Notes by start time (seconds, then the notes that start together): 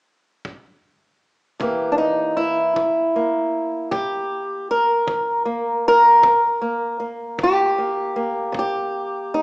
0.45 kick
1.60 C3 E3 A#3 G4, kick
1.92 D4
1.98 D#4
2.37 E4
2.76 E3, kick
3.16 A#3
3.91 C3 G4, kick
4.71 A#4
5.07 E3, kick
5.45 A#3
5.88 A#4
6.23 C3, kick
6.61 A#3
7.00 A#3
7.38 E3, kick
7.43 G4
7.78 A#3
8.16 A#3
8.52 C3, kick
8.59 G4
9.34 D#4